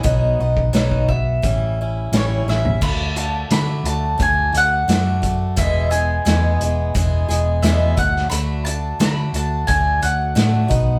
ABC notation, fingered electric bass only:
X:1
M:4/4
L:1/8
Q:1/4=87
K:Alyd
V:1 name="Fingered electric bass" clef=bass
B,,, B,,, B,,,2 A,,,2 A,,, A,,, | [K:Dlyd] D,,2 D, D,, D,, D,, F,,2 | E,,,2 E,, E,,, E,,, E,,, E,, D,, | D,,2 D, D,, D,, D,, A,, B,,, |]